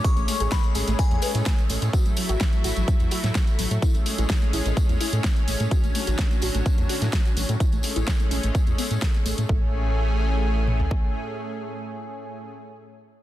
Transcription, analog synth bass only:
\new Staff \with { instrumentName = "Analog synth bass" } { \clef bass \time 4/4 \key a \major \tempo 4 = 127 r16 a,,16 r16 a,,16 r8 a,,16 a,,16 r16 e,16 r16 a,16 r8 a,,16 a,16 | r16 a,,16 r16 a,,16 r8 a,,16 a,,16 r16 e,16 r16 a,16 r8 a,,16 a,16 | r16 a,,16 r16 a,,16 r8 a,,16 a,,16 r16 e,16 r16 a,16 r8 a,,16 a,16 | r16 a,,16 r16 a,,16 r8 a,,16 a,,16 r16 e,16 r16 a,16 r8 a,,16 a,16 |
r16 a,,16 r16 a,,16 r8 a,,16 a,,16 r16 e,16 r16 a,16 r8 a,,16 a,16 | a,,2. r4 | r1 | }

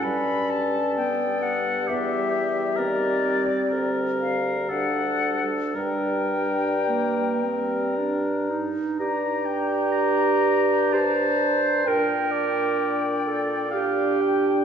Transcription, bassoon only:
\new Staff \with { instrumentName = "Bassoon" } { \clef bass \time 3/4 \key e \dorian \tempo 4 = 63 g,2 e,4 | \key g \minor ees,8 r8 d,4 d,4 | g,2~ g,8 r8 | g,2. |
bes,2. | }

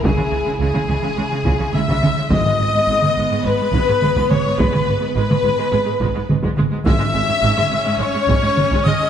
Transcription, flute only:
\new Staff \with { instrumentName = "Flute" } { \time 4/4 \key cis \minor \tempo 4 = 106 gis''4 gis''2 e'''4 | dis'''2 b''4. cis'''8 | b''8 r8 b''2 r4 | e'''2 cis'''4. dis'''8 | }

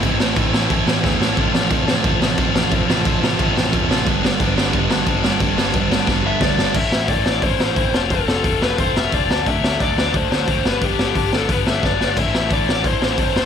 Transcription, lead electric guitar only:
\new Staff \with { instrumentName = "Lead electric guitar" } { \time 4/4 \key a \minor \tempo 4 = 178 r1 | r1 | r1 | r1 |
r2 r8 e''8 d''4 | e''4 d''4 c''4. c''8 | a'4. b'8 c''8 e''8 d''4 | e''4 d''4 c''4. b'8 |
g'4. a'8 b'8 e''8 d''4 | e''4 d''4 c''4. c''8 | }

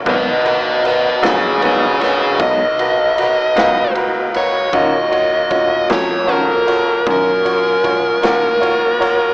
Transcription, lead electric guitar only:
\new Staff \with { instrumentName = "Lead electric guitar" } { \time 12/8 \key ees \minor \tempo 4. = 51 <ces'' ees''>8 <ces'' ees''>8 <ces'' ees''>8 <aes' des''>8 <aes' des''>8 <aes' des''>8 ees''2 r8 des''8 | ees''4. des''8 bes'4 bes'2. | }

